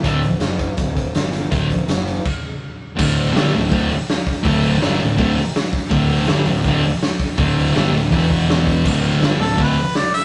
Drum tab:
CC |----------------|--------x-------|x---------------|----------------|
HH |x-x-x-x-x-x-x-x-|x-x-x-x---------|--o-o-o-o-o-o-o-|o-o-o-o-o-o-o-o-|
SD |----o-------o---|----o-----------|----o-o-----o---|----o-------o--o|
BD |o-----o-o-o-----|o-o-----o-------|o-------o-----o-|o-------o-----o-|

CC |----------------|----------------|x---------------|
HH |o-o-o-o-o-o-o-o-|o-o-o-o-o-o-o-o-|--o-o-o-o-o-o-o-|
SD |----o-------o---|----o-o-----o---|----o-o-----o---|
BD |o-------o-----o-|o-------o-o---o-|o-------o-------|